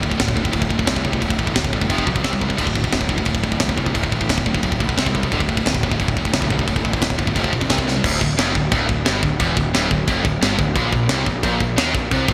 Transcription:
Already playing: D1
0.02 D2 A2, kick
0.10 D2 A2, kick
0.17 D1 D2 A2, kick, snare, china
0.28 kick
0.36 D2 A2, kick
0.44 D2 A2, kick
0.52 D1 D2 A2, kick, china
0.62 kick
0.70 D1 D2 A2, kick
0.78 D2 A2, kick
0.86 C2 D2 A2, kick, snare, china
0.95 D2 A2, kick
1.04 C2 D2 A2, kick
1.12 D2 A2, kick
1.21 D1 D2 A2, kick, china
1.28 D2 A2, kick
1.39 A1 D2 A2, kick
1.47 D2 A2, kick
1.55 D1 D2 A2, kick, snare, china
1.64 kick
1.73 G1 D2 A2, kick
1.81 D2 A2, kick
1.89 F1 F2 C3 F3, kick, china
1.98 kick
2.06 B1 F2 C3, kick
2.15 F2 C3, kick
2.23 C2 C3 G3 C4, kick, snare, china
2.32 C3 G3, kick
2.41 C3 G3, kick
2.48 C3 G3, kick
2.57 D1 D2 A2 D3, kick, china, crash
2.66 D2 A2, kick
2.75 D2 A2, kick
2.84 D2 A2, kick
2.92 D1 D2 A2, kick, snare, china
3.01 kick
3.09 D2 A2, kick
3.18 D2 A2, kick
3.25 D1 D2 A2, kick, china
3.35 kick
3.43 D1 D2 A2, kick
3.52 D2 A2, kick
3.60 C2 D2 A2, kick, snare, china
3.69 D2 A2, kick
3.77 C2 D2 A2, kick
3.86 D2 A2, kick
3.94 D1 D2 A2, kick, china
4.03 D2 A2, kick
4.12 A1 D2 A2, kick
4.21 D2 A2, kick
4.29 D1 D2 A2, kick, snare, china
4.38 kick
4.46 D1 D2 A2, kick
4.54 D2 A2, kick
4.63 D1 D2 A2, kick, china
4.72 kick
4.80 B1 D2 A2, kick
4.89 D2 A2, kick
4.97 C2 C3 G3 C4, kick, snare, china
5.06 C3 G3, kick
5.15 C3 G3, kick
5.23 C3 G3, kick
5.32 D1 D2 A2 D3, kick, china
5.40 D2 A2, kick
5.49 D2 A2, kick
5.57 D2 A2, kick
5.65 D1 D2 A2, kick, snare, china
5.75 kick
5.83 D2 A2, kick
5.91 D2 A2, kick
5.99 D1 D2 A2, kick, china
6.08 kick
6.17 D1 D2 A2, kick
6.25 D2 A2, kick
6.33 C2 D2 A2, kick, snare, china
6.42 D2 A2, kick
6.50 C2 D2 A2, kick
6.59 D2 A2, kick
6.68 D1 D2 A2, kick, china
6.76 D2 A2, kick
6.85 A1 D2 A2, kick
6.93 D2 A2, kick
7.02 D1 D2 A2, kick, snare, china
7.10 kick
7.18 G1 D2 A2, kick
7.27 D2 A2, kick
7.35 F1 F2 C3 F3, kick, china
7.44 kick
7.53 A#1 F2 C3, kick
7.61 F2 C3, kick
7.69 C2 C3 G3 C4, kick, snare, china
7.78 C3 G3, kick
7.87 C3 G3, snare
7.96 C3 G3
8.04 D1 D2, kick, crash, china
8.21 D1 D2, kick
8.37 F1 F2, snare, china
8.55 D1 D2, kick
8.72 D1 D2, kick, china
8.89 D1 D2, kick
9.06 G1 G2, snare, china
9.23 D1 D2, kick
9.40 E1 E2, kick, china
9.57 D1 D2, kick
9.74 D1 D2, snare, china
9.91 D1 D2, kick
10.07 F1 F2, kick, china
10.24 D1 D2, kick
10.41 G1 G2, snare, china
10.59 D1 D2, kick
10.76 A#1 A#2, kick, china
10.93 A#1 A#2, kick
11.09 C2 C3, snare, china
11.26 A#1 A#2, kick
11.43 A#1 A#2, kick, china
11.60 A#1 A#2, kick
11.77 D#2 D#3, snare, china
11.94 A#1 A#2, kick
12.11 C2 C3, kick, china
12.28 A#1 A#2, kick

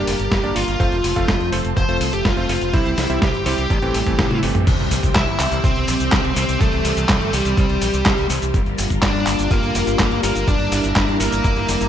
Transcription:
Already playing: G3 A#3 D4 G4 A#4 D5
0.07 F1, open hi-hat
0.19 G1, closed hi-hat
0.32 G1, kick, snare, closed hi-hat
0.43 G1 A#3 D4 G4 D5, closed hi-hat
0.56 G1 F4, open hi-hat
0.68 G1, closed hi-hat
0.80 F1 F3 A3 C4 F4 A4 C5, kick, closed hi-hat
0.92 F1, closed hi-hat
1.04 F1, open hi-hat
1.16 F1 A3 C4 F4 F5, kick, closed hi-hat
1.28 F1, kick, snare, closed hi-hat
1.40 F2, closed hi-hat
1.52 F1 A3 C4 F4 C5, open hi-hat
1.65 F1, closed hi-hat
1.77 F1 C5, kick, closed hi-hat
1.89 F1 A3 C4 F4 C5, closed hi-hat
2.01 C2, open hi-hat
2.13 F1 G4, closed hi-hat
2.25 F1 F4, kick, snare, closed hi-hat
2.37 F1 A3 C4 F4 C5, closed hi-hat
2.49 F1, open hi-hat
2.61 F1, closed hi-hat
2.73 C2 E3 G3 C4 E4 G4 C5, kick, closed hi-hat
2.85 C2, closed hi-hat
2.98 C2, snare, open hi-hat
3.10 C2 G3 C4 E4 E5, closed hi-hat
3.22 C2 G4, kick, snare, closed hi-hat
3.34 G1, closed hi-hat
3.46 C2 G3 C4 E4 G4 C5, open hi-hat
3.58 C2, closed hi-hat
3.70 A1 G3 A3 E4 A4, kick, closed hi-hat
3.82 A1 E3 A3 C4 G4, closed hi-hat
3.94 A1, open hi-hat
4.06 A1 E3 A3 C4 G4, kick, closed hi-hat
4.19 A1, kick, snare, closed hi-hat, high tom
4.31 A2, closed hi-hat, high tom
4.43 G1 E3 A3 C4 G4, open hi-hat
4.55 A1, closed hi-hat, mid tom
4.67 C2 E3 G3 C4 G4 C5, kick, closed hi-hat, crash, impact, cabasa
4.79 C2, closed hi-hat
4.91 C2, open hi-hat, cabasa
5.03 C2, kick, closed hi-hat, cabasa
5.15 C2 E4 E5, kick, snare, clap, closed hi-hat, cabasa
5.28 G1, closed hi-hat
5.40 C2, clap, open hi-hat, cabasa
5.52 C2, closed hi-hat, cabasa
5.64 C2 C4 C5, kick, closed hi-hat, cabasa
5.76 C2, closed hi-hat
5.88 A#1, open hi-hat, cabasa
6.00 C2, closed hi-hat, cabasa
6.12 C2, kick, snare, clap, closed hi-hat, cabasa
6.24 C2, closed hi-hat
6.36 C2 C4 C5, open hi-hat, cabasa
6.49 C2, closed hi-hat, cabasa
6.61 C2 A3 A4, kick, closed hi-hat, cabasa
6.73 C2, closed hi-hat
6.85 C2, open hi-hat, cabasa
6.97 C2, closed hi-hat, cabasa
7.09 C2, kick, snare, clap, closed hi-hat, cabasa
7.21 G1, closed hi-hat
7.33 C2 G3 G4, open hi-hat, cabasa
7.45 C2, closed hi-hat, cabasa
7.57 C2, kick, closed hi-hat, cabasa
7.69 C2, closed hi-hat
7.81 A#1, open hi-hat, cabasa
7.94 C2, closed hi-hat, cabasa
8.06 C2, kick, snare, clap, closed hi-hat, cabasa
8.18 C2, closed hi-hat
8.30 C2, open hi-hat, cabasa
8.42 C2, closed hi-hat, cabasa
8.54 G1 A#3 D4 F4 A#4, kick, closed hi-hat, cabasa
8.66 G1, closed hi-hat
8.78 G1, open hi-hat, cabasa
8.90 G1, kick, closed hi-hat, cabasa
9.03 G1 D4 D5, kick, snare, clap, closed hi-hat, cabasa
9.15 G2, closed hi-hat
9.27 G1, clap, open hi-hat, cabasa
9.39 G1, closed hi-hat, cabasa
9.51 G1 A#3 A#4, kick, closed hi-hat, cabasa
9.63 G1, closed hi-hat
9.75 F1, open hi-hat, cabasa
9.87 G1, closed hi-hat, cabasa
9.99 G1, kick, snare, clap, closed hi-hat, cabasa
10.11 G1, closed hi-hat
10.23 G1 A#3 A#4, open hi-hat, cabasa
10.36 G1, closed hi-hat, cabasa
10.48 G1 D4 E4 D5, kick, closed hi-hat, cabasa
10.60 G1, closed hi-hat
10.72 G1, open hi-hat, cabasa
10.84 G1, closed hi-hat, cabasa
10.96 G1, kick, snare, clap, closed hi-hat, cabasa
11.08 G2, closed hi-hat
11.20 G1 A#3 A#4, open hi-hat, cabasa
11.32 G1, closed hi-hat, cabasa
11.44 G1, kick, closed hi-hat, cabasa
11.56 G1, closed hi-hat
11.69 F1, open hi-hat, cabasa
11.81 G1, closed hi-hat, cabasa

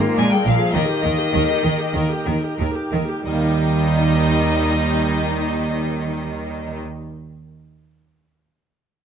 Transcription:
Already playing: G#2 G#3 A#3 C4 F4 G#4
0.04 F4
0.14 A#1 A#2 A#3 D4 G#4 A#4 G#5
0.19 A#2 G#3 G#5
0.32 G3 G#4 G5
0.45 A#1 A#2 F3 A#4 F5
0.59 G#4
0.71 D#2 D#3 A#3 D#4 G4 A#4 D#5
0.76 D#3
0.88 G4
1.02 D#2 D#3 A#4
1.18 G4
1.33 D#2 D#3 A#4
1.48 G4
1.63 D#2 D#3 A#4
1.78 G4
1.94 D#2 D#3 A#4
2.09 G4
2.25 D#2 D#3 A#4
2.41 G4
2.58 D#2 D#3 A#4
2.74 G4
2.91 D#2 D#3 A#4
3.07 G4
3.24 D#2 D#3 G3 D#4 D#5
3.33 A#3
3.41 D#4
3.48 G4
3.55 D#5

